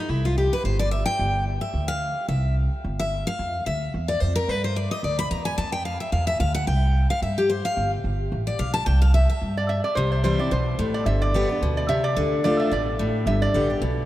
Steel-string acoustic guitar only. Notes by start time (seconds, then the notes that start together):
Already playing: D#4
0.10 E4
0.25 F4
0.38 G4
0.53 B4
0.65 C5
0.79 D5
0.91 E5
1.06 G5
1.61 E5
1.88 F5
2.28 E5
2.99 E5
3.27 F5
3.66 E5
4.08 D5
4.20 C5
4.35 A#4
4.49 B4
4.64 C5
4.76 D5
4.91 D#5
5.04 D5
5.19 B5
5.31 A#5
5.45 G#5
5.58 A5
5.72 G5
5.85 F5
6.00 E5
6.12 F5
6.27 E5
6.40 F5
6.54 F#5
6.67 G5
7.10 F5
7.22 E5
7.38 G4
7.49 C5
7.65 F5
8.47 D5
8.59 F5
8.74 A5
8.86 G5
9.02 F5
9.14 E5
9.30 E5
9.97 C3
10.24 E3 G3 C4 E4
10.39 C4 E4
10.51 B2
10.79 A2
11.06 G2
11.34 D3 G3 B3 G4
11.49 B3 G4
11.63 B2
11.89 C3
12.17 D3
12.44 D3 A3 D4 F4
12.72 B2
12.99 A2
13.27 G2
13.54 D3 G3 B3 G4
13.70 B3 G4
13.82 B2